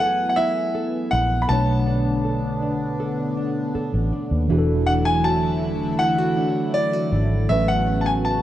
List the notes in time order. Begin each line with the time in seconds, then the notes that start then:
Already playing: F#1 E3 F#3 A3 B3 E4 G#4 A4 B4 G#5
0.00 A4 F#5
0.29 F#5
0.36 E4 E5
0.75 A4
1.11 A#1 E4 F#5
1.42 B5
1.49 B1 B2 D3 A3 B3 D4 C#5 A5
1.87 D4
2.25 A4
2.62 D4
3.00 A4
3.37 D4
3.75 A4, muted fingered electric bass stroke
3.94 A1
4.13 D4
4.31 D#2
4.48 E1 D3 E3 F#3 A3 D4 E4 F#4
4.52 G#4
4.58 A4
4.87 D4 F#5
5.05 G#5
5.24 F#4 A5
5.62 D4
5.99 E4 F#5
6.18 F#4
6.37 D4
6.74 E4 D5
6.93 F#4
7.12 G#1 D4
7.48 A1 A2 C#3 F#3 A3 B3 C#4 F#4 B4 E5
7.68 F#5
7.87 C#4
8.01 A5
8.06 G#5
8.25 F#4 A5